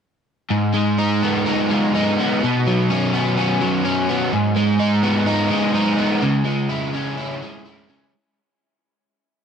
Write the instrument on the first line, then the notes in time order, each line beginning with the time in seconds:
overdriven electric guitar
0.50 G#2
0.74 G#3
0.98 D#4
1.23 B3
1.46 D#4
1.70 G#3
1.95 D#4
2.19 B3
2.43 B2
2.67 F#3
2.90 C#4
3.14 B3
3.38 C#4
3.61 F#3
3.85 C#4
4.09 B3
4.32 G#2
4.56 G#3
4.79 D#4
5.03 B3
5.26 D#4
5.50 G#3
5.74 D#4
5.98 B3
6.22 C#3
6.45 G#3
6.69 E4
6.94 C#4
7.17 E4
7.42 G#3
7.65 E4
7.89 C#4